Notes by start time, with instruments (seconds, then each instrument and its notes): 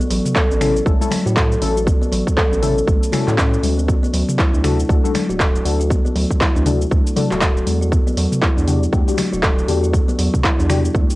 0.01 shaker
0.10 analog synth bass A1, kalimba F#3, open hi-hat, shaker
0.25 mid tom, shaker
0.36 kalimba A4, kick, clap, shaker
0.50 analog synth bass A1, kalimba C#4, shaker
0.61 synth stab C#4 E4 A4, finger snap, open hi-hat, mid tom, high conga, shaker
0.77 shaker
0.86 analog synth bass A1, kalimba A3, synth stab C#4 E4 A4, kick, high conga, shaker
1.01 synth stab C#4 E4 A4, high conga, shaker
1.11 kalimba F#3, finger snap, open hi-hat, high conga, low conga, shaker
1.26 analog synth bass A2, kalimba F#4, shaker
1.36 kalimba A4, kick, clap, shaker
1.52 shaker
1.61 analog synth bass A1, synth stab C#4 E4 A4, open hi-hat, low conga, shaker
1.77 kalimba F#4, shaker
1.87 kalimba B3, kick, high conga, shaker
2.02 kalimba B3, shaker
2.12 analog synth bass A1, kalimba F#3, open hi-hat, shaker
2.27 kick, shaker
2.37 kalimba A4, kick, clap, shaker
2.52 analog synth bass A1, kalimba C#4, shaker
2.62 synth stab C#4 E4 A4, open hi-hat, mid tom, high conga, low conga, shaker
2.78 shaker
2.87 analog synth bass A1, kalimba A3, kick, high conga, shaker
3.03 shaker
3.12 synth stab C#4 E4 A4, kalimba F#4, finger snap, open hi-hat, mid tom, high conga, shaker
3.28 analog synth bass A2, kalimba F#4, clap, low conga, shaker
3.38 kalimba C#4, finger snap, kick, clap, shaker
3.54 shaker
3.63 analog synth bass D2, kalimba F#4, open hi-hat, high conga, shaker
3.78 kalimba B3, shaker
3.88 kalimba B3, kick, high conga, shaker
4.03 kalimba B3, shaker
4.13 analog synth bass D2, kalimba F#3, open hi-hat, shaker
4.29 mid tom, shaker
4.39 kalimba E4, kick, clap, shaker
4.54 analog synth bass D2, kalimba D4, shaker
4.64 synth stab D4 F#4 A4, finger snap, open hi-hat, mid tom, high conga, shaker
4.80 shaker
4.89 analog synth bass D2, kalimba A3, synth stab D4 F#4 A4, kick, high conga, shaker
5.04 synth stab D4 F#4 A4, high conga, shaker
5.14 kalimba F#3, finger snap, open hi-hat, high conga, low conga, shaker
5.29 analog synth bass D1, kalimba F#4, shaker
5.39 kalimba A4, kick, clap, shaker
5.56 shaker
5.65 analog synth bass D2, synth stab D4 F#4 A4, open hi-hat, low conga, shaker
5.80 kalimba F#4, shaker
5.90 kalimba B3, kick, high conga, shaker
6.05 kalimba B3, shaker
6.15 analog synth bass D2, kalimba F#3, open hi-hat, shaker
6.31 kick, shaker
6.40 kalimba E4, kick, clap, shaker
6.55 analog synth bass D2, kalimba D4, shaker
6.66 synth stab D4 F#4 A4, open hi-hat, mid tom, high conga, low conga, shaker
6.81 shaker
6.91 analog synth bass D2, kalimba A3, kick, high conga, shaker
7.07 shaker
7.16 kalimba F#3, synth stab D4 F#4 A4, open hi-hat, mid tom, high conga, shaker
7.31 analog synth bass D1, kalimba F#4, clap, low conga, shaker
7.41 kalimba A4, finger snap, kick, clap, shaker
7.57 shaker
7.67 analog synth bass E2, open hi-hat, high conga, shaker
7.81 kalimba F#4, shaker
7.92 kalimba B3, kick, shaker
8.07 kalimba B3, shaker
8.17 analog synth bass E2, kalimba F#3, open hi-hat, shaker
8.32 mid tom, shaker
8.42 kalimba E4, kick, clap, shaker
8.57 analog synth bass E2, kalimba D4, shaker
8.67 synth stab D4 F#4 G4, open hi-hat, mid tom, high conga, shaker
8.83 shaker
8.92 analog synth bass E2, kalimba A3, synth stab D4 F#4 G4, kick, high conga, shaker
9.08 synth stab D4 F#4 G4, high conga, shaker
9.17 kalimba F#3, finger snap, open hi-hat, high conga, low conga, shaker
9.32 analog synth bass E1, kalimba F#4, shaker
9.43 kalimba A4, kick, clap, shaker
9.59 shaker
9.68 analog synth bass E2, synth stab D4 F#4 G4, open hi-hat, low conga, shaker
9.83 kalimba F#4, shaker
9.93 kalimba B3, kick, high conga, shaker
10.08 kalimba B3, shaker
10.19 analog synth bass E2, kalimba F#3, open hi-hat, shaker
10.34 kick, mid tom, shaker
10.44 kalimba E4, kick, clap, shaker
10.59 analog synth bass E2, kalimba D4, shaker
10.69 synth stab D4 F#4 G4, finger snap, open hi-hat, mid tom, high conga, low conga, shaker
10.85 shaker
10.94 analog synth bass E2, kalimba A3, kick, high conga, shaker
11.10 shaker